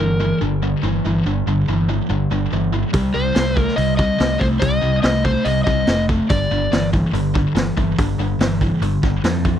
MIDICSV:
0, 0, Header, 1, 5, 480
1, 0, Start_track
1, 0, Tempo, 419580
1, 1449, Time_signature, 4, 2, 24, 8
1, 10977, End_track
2, 0, Start_track
2, 0, Title_t, "Electric slide guitar"
2, 0, Program_c, 0, 29
2, 0, Note_on_c, 0, 70, 76
2, 452, Note_off_c, 0, 70, 0
2, 3594, Note_on_c, 0, 72, 87
2, 4109, Note_off_c, 0, 72, 0
2, 4109, Note_on_c, 0, 70, 87
2, 4275, Note_off_c, 0, 70, 0
2, 4303, Note_on_c, 0, 75, 101
2, 4530, Note_off_c, 0, 75, 0
2, 4544, Note_on_c, 0, 75, 96
2, 5030, Note_on_c, 0, 72, 76
2, 5050, Note_off_c, 0, 75, 0
2, 5097, Note_off_c, 0, 72, 0
2, 5257, Note_on_c, 0, 75, 101
2, 5737, Note_off_c, 0, 75, 0
2, 5751, Note_on_c, 0, 75, 91
2, 5982, Note_off_c, 0, 75, 0
2, 5999, Note_on_c, 0, 72, 86
2, 6229, Note_on_c, 0, 75, 93
2, 6251, Note_off_c, 0, 72, 0
2, 6439, Note_off_c, 0, 75, 0
2, 6453, Note_on_c, 0, 75, 92
2, 6915, Note_off_c, 0, 75, 0
2, 7204, Note_on_c, 0, 74, 82
2, 7881, Note_off_c, 0, 74, 0
2, 10977, End_track
3, 0, Start_track
3, 0, Title_t, "Distorted electric guitar"
3, 0, Program_c, 1, 30
3, 0, Note_on_c, 1, 43, 72
3, 4, Note_on_c, 1, 52, 76
3, 216, Note_off_c, 1, 43, 0
3, 223, Note_off_c, 1, 52, 0
3, 230, Note_on_c, 1, 43, 68
3, 243, Note_on_c, 1, 52, 76
3, 456, Note_off_c, 1, 43, 0
3, 463, Note_off_c, 1, 52, 0
3, 470, Note_on_c, 1, 43, 78
3, 474, Note_on_c, 1, 50, 86
3, 696, Note_off_c, 1, 43, 0
3, 698, Note_off_c, 1, 50, 0
3, 714, Note_on_c, 1, 43, 66
3, 723, Note_on_c, 1, 50, 70
3, 938, Note_off_c, 1, 43, 0
3, 942, Note_off_c, 1, 50, 0
3, 953, Note_on_c, 1, 43, 76
3, 966, Note_on_c, 1, 52, 87
3, 1177, Note_off_c, 1, 43, 0
3, 1184, Note_off_c, 1, 52, 0
3, 1206, Note_on_c, 1, 43, 72
3, 1210, Note_on_c, 1, 52, 82
3, 1424, Note_off_c, 1, 43, 0
3, 1426, Note_off_c, 1, 52, 0
3, 1447, Note_on_c, 1, 43, 80
3, 1448, Note_on_c, 1, 50, 85
3, 1664, Note_off_c, 1, 43, 0
3, 1665, Note_off_c, 1, 50, 0
3, 1686, Note_on_c, 1, 43, 69
3, 1692, Note_on_c, 1, 50, 78
3, 1904, Note_off_c, 1, 43, 0
3, 1906, Note_off_c, 1, 50, 0
3, 1925, Note_on_c, 1, 43, 72
3, 1931, Note_on_c, 1, 52, 88
3, 2143, Note_off_c, 1, 43, 0
3, 2146, Note_off_c, 1, 52, 0
3, 2162, Note_on_c, 1, 43, 68
3, 2169, Note_on_c, 1, 52, 69
3, 2381, Note_off_c, 1, 43, 0
3, 2385, Note_off_c, 1, 52, 0
3, 2397, Note_on_c, 1, 43, 80
3, 2403, Note_on_c, 1, 50, 80
3, 2619, Note_off_c, 1, 43, 0
3, 2622, Note_off_c, 1, 50, 0
3, 2648, Note_on_c, 1, 43, 65
3, 2657, Note_on_c, 1, 50, 72
3, 2864, Note_off_c, 1, 43, 0
3, 2869, Note_off_c, 1, 50, 0
3, 2893, Note_on_c, 1, 43, 76
3, 2902, Note_on_c, 1, 52, 74
3, 3107, Note_off_c, 1, 43, 0
3, 3111, Note_off_c, 1, 52, 0
3, 3121, Note_on_c, 1, 43, 61
3, 3132, Note_on_c, 1, 52, 73
3, 3340, Note_off_c, 1, 43, 0
3, 3346, Note_off_c, 1, 52, 0
3, 3359, Note_on_c, 1, 48, 74
3, 3362, Note_on_c, 1, 55, 78
3, 3580, Note_off_c, 1, 48, 0
3, 3581, Note_off_c, 1, 55, 0
3, 3600, Note_on_c, 1, 48, 76
3, 3600, Note_on_c, 1, 55, 77
3, 3820, Note_off_c, 1, 48, 0
3, 3820, Note_off_c, 1, 55, 0
3, 3832, Note_on_c, 1, 48, 74
3, 3836, Note_on_c, 1, 57, 89
3, 4056, Note_off_c, 1, 48, 0
3, 4058, Note_off_c, 1, 57, 0
3, 4070, Note_on_c, 1, 48, 69
3, 4075, Note_on_c, 1, 57, 78
3, 4292, Note_off_c, 1, 48, 0
3, 4297, Note_off_c, 1, 57, 0
3, 4306, Note_on_c, 1, 48, 75
3, 4316, Note_on_c, 1, 55, 88
3, 4533, Note_off_c, 1, 48, 0
3, 4538, Note_off_c, 1, 55, 0
3, 4558, Note_on_c, 1, 48, 72
3, 4562, Note_on_c, 1, 55, 78
3, 4779, Note_off_c, 1, 48, 0
3, 4781, Note_off_c, 1, 55, 0
3, 4790, Note_on_c, 1, 48, 76
3, 4794, Note_on_c, 1, 57, 92
3, 5009, Note_off_c, 1, 48, 0
3, 5017, Note_off_c, 1, 57, 0
3, 5022, Note_on_c, 1, 48, 68
3, 5031, Note_on_c, 1, 57, 75
3, 5251, Note_off_c, 1, 48, 0
3, 5255, Note_off_c, 1, 57, 0
3, 5263, Note_on_c, 1, 48, 77
3, 5270, Note_on_c, 1, 55, 80
3, 5491, Note_off_c, 1, 48, 0
3, 5495, Note_off_c, 1, 55, 0
3, 5508, Note_on_c, 1, 48, 68
3, 5519, Note_on_c, 1, 55, 73
3, 5734, Note_off_c, 1, 48, 0
3, 5740, Note_off_c, 1, 55, 0
3, 5757, Note_on_c, 1, 48, 80
3, 5767, Note_on_c, 1, 57, 88
3, 5978, Note_off_c, 1, 48, 0
3, 5983, Note_off_c, 1, 57, 0
3, 6004, Note_on_c, 1, 48, 70
3, 6009, Note_on_c, 1, 57, 76
3, 6222, Note_off_c, 1, 48, 0
3, 6225, Note_off_c, 1, 57, 0
3, 6239, Note_on_c, 1, 48, 72
3, 6243, Note_on_c, 1, 55, 92
3, 6459, Note_off_c, 1, 48, 0
3, 6461, Note_off_c, 1, 55, 0
3, 6477, Note_on_c, 1, 48, 64
3, 6478, Note_on_c, 1, 55, 79
3, 6698, Note_off_c, 1, 48, 0
3, 6699, Note_off_c, 1, 55, 0
3, 6726, Note_on_c, 1, 48, 75
3, 6730, Note_on_c, 1, 57, 78
3, 6943, Note_off_c, 1, 48, 0
3, 6945, Note_off_c, 1, 57, 0
3, 6969, Note_on_c, 1, 48, 65
3, 6971, Note_on_c, 1, 57, 74
3, 7184, Note_off_c, 1, 48, 0
3, 7186, Note_off_c, 1, 57, 0
3, 7199, Note_on_c, 1, 43, 83
3, 7204, Note_on_c, 1, 50, 95
3, 7419, Note_off_c, 1, 43, 0
3, 7422, Note_off_c, 1, 50, 0
3, 7447, Note_on_c, 1, 43, 71
3, 7455, Note_on_c, 1, 50, 79
3, 7663, Note_off_c, 1, 43, 0
3, 7668, Note_off_c, 1, 50, 0
3, 7682, Note_on_c, 1, 43, 77
3, 7691, Note_on_c, 1, 52, 88
3, 7901, Note_off_c, 1, 43, 0
3, 7905, Note_off_c, 1, 52, 0
3, 7927, Note_on_c, 1, 43, 67
3, 7930, Note_on_c, 1, 52, 66
3, 8144, Note_off_c, 1, 43, 0
3, 8145, Note_off_c, 1, 52, 0
3, 8162, Note_on_c, 1, 43, 75
3, 8172, Note_on_c, 1, 50, 91
3, 8381, Note_off_c, 1, 43, 0
3, 8386, Note_off_c, 1, 50, 0
3, 8397, Note_on_c, 1, 43, 71
3, 8403, Note_on_c, 1, 50, 79
3, 8619, Note_off_c, 1, 43, 0
3, 8622, Note_off_c, 1, 50, 0
3, 8634, Note_on_c, 1, 52, 75
3, 8635, Note_on_c, 1, 43, 75
3, 8858, Note_off_c, 1, 43, 0
3, 8858, Note_off_c, 1, 52, 0
3, 8883, Note_on_c, 1, 43, 65
3, 8894, Note_on_c, 1, 52, 70
3, 9102, Note_off_c, 1, 43, 0
3, 9107, Note_off_c, 1, 52, 0
3, 9135, Note_on_c, 1, 43, 74
3, 9138, Note_on_c, 1, 50, 84
3, 9348, Note_off_c, 1, 43, 0
3, 9350, Note_off_c, 1, 50, 0
3, 9372, Note_on_c, 1, 43, 67
3, 9378, Note_on_c, 1, 50, 85
3, 9586, Note_off_c, 1, 43, 0
3, 9589, Note_off_c, 1, 50, 0
3, 9617, Note_on_c, 1, 43, 76
3, 9620, Note_on_c, 1, 52, 84
3, 9829, Note_off_c, 1, 43, 0
3, 9831, Note_off_c, 1, 52, 0
3, 9860, Note_on_c, 1, 43, 71
3, 9867, Note_on_c, 1, 52, 73
3, 10070, Note_off_c, 1, 43, 0
3, 10074, Note_off_c, 1, 52, 0
3, 10089, Note_on_c, 1, 43, 74
3, 10099, Note_on_c, 1, 50, 81
3, 10305, Note_off_c, 1, 43, 0
3, 10310, Note_off_c, 1, 50, 0
3, 10331, Note_on_c, 1, 43, 68
3, 10338, Note_on_c, 1, 50, 69
3, 10546, Note_off_c, 1, 43, 0
3, 10550, Note_off_c, 1, 50, 0
3, 10574, Note_on_c, 1, 43, 71
3, 10574, Note_on_c, 1, 52, 76
3, 10787, Note_off_c, 1, 52, 0
3, 10788, Note_off_c, 1, 43, 0
3, 10811, Note_on_c, 1, 43, 72
3, 10813, Note_on_c, 1, 52, 71
3, 10977, Note_off_c, 1, 43, 0
3, 10977, Note_off_c, 1, 52, 0
3, 10977, End_track
4, 0, Start_track
4, 0, Title_t, "Picked electric bass"
4, 0, Program_c, 2, 34
4, 0, Note_on_c, 2, 31, 78
4, 359, Note_off_c, 2, 31, 0
4, 479, Note_on_c, 2, 31, 83
4, 839, Note_off_c, 2, 31, 0
4, 953, Note_on_c, 2, 31, 90
4, 1137, Note_off_c, 2, 31, 0
4, 1200, Note_on_c, 2, 31, 81
4, 1382, Note_off_c, 2, 31, 0
4, 1435, Note_on_c, 2, 31, 85
4, 1619, Note_off_c, 2, 31, 0
4, 1681, Note_on_c, 2, 31, 83
4, 1862, Note_off_c, 2, 31, 0
4, 1917, Note_on_c, 2, 31, 81
4, 2277, Note_off_c, 2, 31, 0
4, 2400, Note_on_c, 2, 31, 80
4, 2581, Note_off_c, 2, 31, 0
4, 2636, Note_on_c, 2, 31, 79
4, 2819, Note_off_c, 2, 31, 0
4, 2880, Note_on_c, 2, 31, 80
4, 3239, Note_off_c, 2, 31, 0
4, 3364, Note_on_c, 2, 36, 81
4, 3544, Note_off_c, 2, 36, 0
4, 3600, Note_on_c, 2, 36, 78
4, 3781, Note_off_c, 2, 36, 0
4, 3847, Note_on_c, 2, 36, 79
4, 4203, Note_off_c, 2, 36, 0
4, 4323, Note_on_c, 2, 36, 87
4, 4681, Note_off_c, 2, 36, 0
4, 4807, Note_on_c, 2, 36, 85
4, 4985, Note_off_c, 2, 36, 0
4, 5045, Note_on_c, 2, 36, 82
4, 5224, Note_off_c, 2, 36, 0
4, 5286, Note_on_c, 2, 36, 87
4, 5464, Note_off_c, 2, 36, 0
4, 5521, Note_on_c, 2, 36, 77
4, 5702, Note_off_c, 2, 36, 0
4, 5763, Note_on_c, 2, 36, 84
4, 6121, Note_off_c, 2, 36, 0
4, 6244, Note_on_c, 2, 36, 86
4, 6424, Note_off_c, 2, 36, 0
4, 6484, Note_on_c, 2, 36, 78
4, 6664, Note_off_c, 2, 36, 0
4, 6722, Note_on_c, 2, 29, 85
4, 7080, Note_off_c, 2, 29, 0
4, 7206, Note_on_c, 2, 31, 88
4, 7385, Note_off_c, 2, 31, 0
4, 7449, Note_on_c, 2, 31, 87
4, 7627, Note_off_c, 2, 31, 0
4, 7683, Note_on_c, 2, 31, 83
4, 8042, Note_off_c, 2, 31, 0
4, 8160, Note_on_c, 2, 31, 89
4, 8519, Note_off_c, 2, 31, 0
4, 8638, Note_on_c, 2, 31, 87
4, 8820, Note_off_c, 2, 31, 0
4, 8896, Note_on_c, 2, 31, 77
4, 9071, Note_off_c, 2, 31, 0
4, 9138, Note_on_c, 2, 31, 80
4, 9313, Note_off_c, 2, 31, 0
4, 9361, Note_on_c, 2, 31, 85
4, 9542, Note_off_c, 2, 31, 0
4, 9600, Note_on_c, 2, 31, 83
4, 9960, Note_off_c, 2, 31, 0
4, 10086, Note_on_c, 2, 31, 84
4, 10265, Note_off_c, 2, 31, 0
4, 10335, Note_on_c, 2, 31, 79
4, 10511, Note_off_c, 2, 31, 0
4, 10569, Note_on_c, 2, 41, 80
4, 10925, Note_off_c, 2, 41, 0
4, 10977, End_track
5, 0, Start_track
5, 0, Title_t, "Drums"
5, 3359, Note_on_c, 9, 46, 47
5, 3362, Note_on_c, 9, 36, 102
5, 3473, Note_off_c, 9, 46, 0
5, 3476, Note_off_c, 9, 36, 0
5, 3838, Note_on_c, 9, 46, 48
5, 3843, Note_on_c, 9, 38, 104
5, 3952, Note_off_c, 9, 46, 0
5, 3957, Note_off_c, 9, 38, 0
5, 4081, Note_on_c, 9, 36, 76
5, 4195, Note_off_c, 9, 36, 0
5, 4205, Note_on_c, 9, 38, 31
5, 4320, Note_off_c, 9, 38, 0
5, 4322, Note_on_c, 9, 46, 44
5, 4436, Note_off_c, 9, 46, 0
5, 4563, Note_on_c, 9, 36, 81
5, 4678, Note_off_c, 9, 36, 0
5, 4805, Note_on_c, 9, 46, 46
5, 4809, Note_on_c, 9, 38, 92
5, 4919, Note_off_c, 9, 46, 0
5, 4924, Note_off_c, 9, 38, 0
5, 5046, Note_on_c, 9, 36, 70
5, 5161, Note_off_c, 9, 36, 0
5, 5285, Note_on_c, 9, 36, 114
5, 5286, Note_on_c, 9, 46, 50
5, 5399, Note_off_c, 9, 36, 0
5, 5400, Note_off_c, 9, 46, 0
5, 5759, Note_on_c, 9, 46, 48
5, 5763, Note_on_c, 9, 38, 104
5, 5873, Note_off_c, 9, 46, 0
5, 5878, Note_off_c, 9, 38, 0
5, 6005, Note_on_c, 9, 36, 76
5, 6119, Note_off_c, 9, 36, 0
5, 6237, Note_on_c, 9, 46, 47
5, 6351, Note_off_c, 9, 46, 0
5, 6484, Note_on_c, 9, 36, 84
5, 6599, Note_off_c, 9, 36, 0
5, 6715, Note_on_c, 9, 46, 41
5, 6719, Note_on_c, 9, 38, 100
5, 6829, Note_off_c, 9, 46, 0
5, 6834, Note_off_c, 9, 38, 0
5, 6968, Note_on_c, 9, 36, 73
5, 7082, Note_off_c, 9, 36, 0
5, 7199, Note_on_c, 9, 46, 44
5, 7209, Note_on_c, 9, 36, 107
5, 7313, Note_off_c, 9, 46, 0
5, 7324, Note_off_c, 9, 36, 0
5, 7694, Note_on_c, 9, 46, 44
5, 7698, Note_on_c, 9, 38, 100
5, 7808, Note_off_c, 9, 46, 0
5, 7812, Note_off_c, 9, 38, 0
5, 7934, Note_on_c, 9, 36, 77
5, 8049, Note_off_c, 9, 36, 0
5, 8175, Note_on_c, 9, 46, 45
5, 8290, Note_off_c, 9, 46, 0
5, 8413, Note_on_c, 9, 36, 85
5, 8527, Note_off_c, 9, 36, 0
5, 8650, Note_on_c, 9, 46, 49
5, 8655, Note_on_c, 9, 38, 98
5, 8765, Note_off_c, 9, 46, 0
5, 8769, Note_off_c, 9, 38, 0
5, 8894, Note_on_c, 9, 36, 74
5, 9008, Note_off_c, 9, 36, 0
5, 9134, Note_on_c, 9, 46, 51
5, 9135, Note_on_c, 9, 36, 108
5, 9249, Note_off_c, 9, 46, 0
5, 9250, Note_off_c, 9, 36, 0
5, 9614, Note_on_c, 9, 46, 49
5, 9618, Note_on_c, 9, 38, 105
5, 9728, Note_off_c, 9, 46, 0
5, 9733, Note_off_c, 9, 38, 0
5, 9851, Note_on_c, 9, 36, 76
5, 9966, Note_off_c, 9, 36, 0
5, 10093, Note_on_c, 9, 46, 48
5, 10207, Note_off_c, 9, 46, 0
5, 10332, Note_on_c, 9, 36, 81
5, 10338, Note_on_c, 9, 38, 32
5, 10447, Note_off_c, 9, 36, 0
5, 10452, Note_off_c, 9, 38, 0
5, 10570, Note_on_c, 9, 46, 47
5, 10575, Note_on_c, 9, 38, 95
5, 10684, Note_off_c, 9, 46, 0
5, 10689, Note_off_c, 9, 38, 0
5, 10811, Note_on_c, 9, 36, 73
5, 10925, Note_off_c, 9, 36, 0
5, 10977, End_track
0, 0, End_of_file